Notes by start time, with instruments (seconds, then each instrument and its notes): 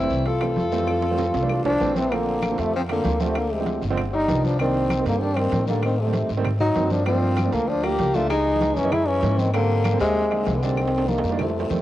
Already playing: trombone C4, tenor saxophone E4
0.02 grand piano E3 G3 A3 C4
0.10 upright bass C2, high conga, short guiro
0.26 trombone F4, tenor saxophone A4, high conga, high timbale, long guiro
0.41 grand piano E3 G3 A3 C4, high conga, high timbale, claves
0.56 upright bass F2, high conga, low timbale, short guiro
0.72 grand piano E3 G3 A3 C4, high conga, short guiro
0.87 high conga, high timbale, long guiro, claves
1.02 high conga, high timbale
1.11 grand piano E3 G3 A3 C4
1.18 high conga, high timbale, short guiro
1.34 upright bass C2, high conga, high timbale, short guiro
1.42 grand piano E3 G3 A3 D4
1.49 high conga, low timbale, long guiro, claves
1.65 upright bass C2, tenor saxophone F3, trombone D4, high conga, low timbale
1.80 upright bass A#1, grand piano E3 G3 A3 C4, high conga, low timbale, short guiro
1.95 tenor saxophone E3, trombone C4, high conga, low timbale, short guiro
2.12 grand piano D3 F3 A3 C4, tenor saxophone D3, trombone A#3, high conga, high timbale, long guiro, claves
2.27 high conga
2.42 high conga, high timbale, low timbale, short guiro, claves
2.51 grand piano D3 F3 A3 C4
2.58 upright bass F2, tenor saxophone C3, trombone A3, high timbale, short guiro
2.74 tenor saxophone F3, trombone C4, high conga, long guiro
2.89 grand piano D3 F3 A3 C4, tenor saxophone D3, trombone A#3, high conga, high timbale, claves
3.04 upright bass D2, high conga, high timbale, low timbale, short guiro
3.20 tenor saxophone C3, grand piano D3 F3 A3 C4, trombone A3, high conga, short guiro
3.35 tenor saxophone D3, trombone A#3, high conga, high timbale, long guiro, claves
3.51 tenor saxophone C3, trombone G#3, high conga
3.60 grand piano D3 F3 G#3 C4
3.66 high conga, high timbale, low timbale, short guiro
3.82 upright bass G1, high conga, short guiro
3.90 grand piano D3 F3 G#3 C4
3.97 high conga, low conga, high timbale, long guiro, claves
4.13 tenor saxophone G3, trombone D#4, high conga
4.28 upright bass C2, grand piano D#3 F3 B3 D4, high conga, high timbale, low timbale, short guiro
4.43 tenor saxophone F3, trombone D4, high conga, short guiro
4.59 grand piano D#3 G3 A#3 D4, tenor saxophone D#3, trombone C4, high timbale, long guiro, claves
4.75 high conga
4.90 high conga, high timbale, low timbale, short guiro, claves
4.99 grand piano D#3 G3 A#3 C4
5.05 upright bass G2, tenor saxophone D3, trombone A#3, high timbale, short guiro
5.21 tenor saxophone G3, trombone D4, high conga, long guiro
5.37 tenor saxophone D#3, grand piano D#3 G3 A#3 D4, trombone C4, high conga, high timbale, claves
5.52 upright bass A2, high conga, high timbale, low timbale, short guiro
5.67 tenor saxophone D3, grand piano D#3 G3 A#3 D4, trombone A#3, high conga, short guiro
5.83 tenor saxophone D#3, trombone C4, high timbale, long guiro, claves
5.99 tenor saxophone C3, trombone A3, high conga
6.07 grand piano D#3 G3 A3 C4
6.13 high conga, high timbale, low timbale, short guiro
6.29 upright bass G#2, high conga, short guiro
6.37 grand piano D#3 G3 A3 C4
6.44 high conga, low conga, high timbale, long guiro, claves
6.60 tenor saxophone F#3, trombone D#4, high conga, low conga
6.75 upright bass G2, grand piano D#3 F#3 A#3 C4, high conga, high timbale, low timbale, short guiro
6.90 tenor saxophone F3, trombone D4, high conga, short guiro
7.06 grand piano F3 A3 A#3 D4, tenor saxophone F3, trombone C4, high conga, high timbale, long guiro, claves
7.23 high conga
7.37 high conga, high timbale, low timbale, short guiro, claves
7.46 grand piano F3 A3 A#3 D4
7.52 upright bass D2, tenor saxophone D3, trombone A#3, high timbale, short guiro
7.68 tenor saxophone F3, trombone D4, high conga, long guiro
7.84 grand piano F3 A3 A#3 D4, tenor saxophone A#3, trombone G4, high conga, high timbale, claves
7.99 upright bass C#2, high conga, high timbale, low timbale, short guiro
8.14 grand piano F3 A3 A#3 D4, tenor saxophone A3, trombone F4, high conga, short guiro
8.30 tenor saxophone G#3, trombone D#4, high conga, high timbale, long guiro, claves
8.46 high conga
8.54 grand piano E3 G#3 B3 D#4
8.61 high conga, high timbale, low timbale, short guiro
8.76 upright bass F#2, tenor saxophone E3, trombone C#4, high conga, short guiro
8.84 grand piano E3 G#3 B3 D#4
8.92 tenor saxophone G#3, trombone E4, high conga, low conga, high timbale, long guiro, claves
9.07 tenor saxophone E3, trombone C#4, high conga
9.22 upright bass G#2, grand piano E3 G#3 A#3 C#4, high conga, high timbale, low timbale, short guiro
9.38 tenor saxophone D#3, trombone C4, high conga, short guiro
9.53 tenor saxophone D3, grand piano D3 G3 A#3 C4, trombone A#3, high timbale, long guiro, claves
9.70 high conga
9.84 high conga, high timbale, low timbale, short guiro, claves
9.93 grand piano D3 G3 A#3 C4
10.00 upright bass D#2, tenor saxophone C3, trombone G#3, high timbale, short guiro
10.15 high conga, long guiro
10.30 grand piano D3 G3 A#3 D#4, high conga, high timbale, claves
10.46 upright bass C2, high conga, high timbale, low timbale, short guiro
10.55 tenor saxophone D3, trombone B3
10.62 grand piano D3 G3 A#3 D4, tenor saxophone D#3, trombone C4, short guiro
10.77 high conga, high timbale, long guiro, claves
10.88 high timbale
10.93 high conga
10.98 grand piano D#3 G3 A#3 D4, high timbale
11.08 tenor saxophone D#3, trombone A#3, high conga, short guiro
11.18 high timbale
11.24 upright bass F2, high conga, short guiro
11.29 grand piano D#3 G3 A#3 D4, low timbale
11.39 tenor saxophone C3, trombone A3, high conga, low conga, low timbale, long guiro, claves
11.50 low timbale
11.55 high conga
11.60 low timbale
11.70 upright bass F2, grand piano D#3 G3 A3 C4, high conga, short guiro